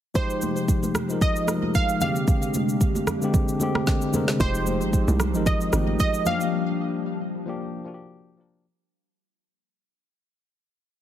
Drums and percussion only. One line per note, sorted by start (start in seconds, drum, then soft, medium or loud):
0.15 kick loud
0.15 shaker medium
0.30 shaker medium
0.42 high conga medium
0.42 shaker loud
0.56 shaker soft
0.68 kick medium
0.68 shaker medium
0.83 high conga medium
0.83 shaker medium
0.95 cross-stick loud
0.95 high conga medium
0.95 low conga medium
0.95 shaker medium
1.10 shaker medium
1.21 kick loud
1.21 low conga medium
1.21 shaker medium
1.36 shaker medium
1.47 cross-stick medium
1.47 high conga medium
1.47 shaker loud
1.62 high conga medium
1.75 kick medium
1.75 shaker medium
1.89 shaker medium
2.01 high conga medium
2.01 low conga medium
2.01 shaker loud
2.16 shaker medium
2.28 kick loud
2.28 shaker medium
2.42 shaker medium
2.54 high conga medium
2.54 shaker loud
2.69 shaker soft
2.81 kick medium
2.81 shaker medium
2.95 high conga medium
2.95 shaker soft
3.07 cross-stick medium
3.07 high conga medium
3.07 low conga medium
3.07 shaker medium
3.22 shaker soft
3.33 kick loud
3.33 low conga medium
3.33 shaker medium
3.48 shaker medium
3.60 high conga medium
3.60 shaker loud
3.75 cross-stick loud
3.75 high conga medium
3.87 kick medium
3.87 snare medium
3.87 shaker medium
4.02 shaker medium
4.13 high conga medium
4.13 low conga medium
4.13 shaker loud
4.28 snare medium
4.28 shaker medium
4.40 kick loud
4.40 shaker medium
4.55 shaker medium
4.67 high conga medium
4.67 shaker loud
4.81 shaker soft
4.93 kick medium
4.93 shaker medium
5.08 high conga medium
5.08 shaker medium
5.20 cross-stick medium
5.20 high conga medium
5.20 low conga medium
5.20 shaker medium
5.34 shaker soft
5.46 kick loud
5.46 low conga medium
5.46 shaker medium
5.61 shaker medium
5.72 cross-stick medium
5.72 high conga medium
5.72 shaker loud
5.87 high conga medium
5.99 kick medium
5.99 shaker medium
6.14 shaker medium
6.26 high conga medium
6.26 low conga medium
6.26 shaker medium
6.41 shaker medium